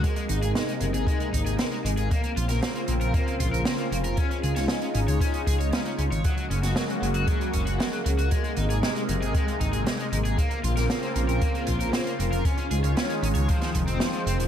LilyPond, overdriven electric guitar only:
\new Staff \with { instrumentName = "Overdriven electric guitar" } { \time 4/4 \key bes \minor \tempo 4 = 116 aes16 aes16 ees'16 aes'16 aes16 aes16 aes16 aes'16 aes16 aes16 ees'16 aes'16 aes16 aes16 aes16 aes'16 | bes16 bes16 f'16 bes'16 bes16 bes16 bes16 bes'16 bes16 bes16 f'16 bes'16 bes16 bes16 bes16 bes'16 | des'16 des'16 aes'16 des''16 des'16 des'16 des'16 des''16 des'16 des'16 aes'16 des''16 des'16 des'16 des'16 des''16 | ges16 ges16 des'16 ges'16 ges16 ges16 ges16 ges'16 ges16 ges16 des'16 ges'16 ges16 ges16 ges16 ges'16 |
aes16 aes16 ees'16 aes'16 aes16 aes16 aes16 aes'16 aes16 aes16 ees'16 aes'16 aes16 aes16 aes16 aes'16 | bes16 bes16 f'16 bes'16 bes16 bes16 bes16 bes'16 bes16 bes16 f'16 bes'16 bes16 bes16 bes16 bes'16 | des'16 des'16 aes'16 des''16 des'16 des'16 des'16 des''16 f16 f16 f16 c'16 f16 f16 c'16 f16 | }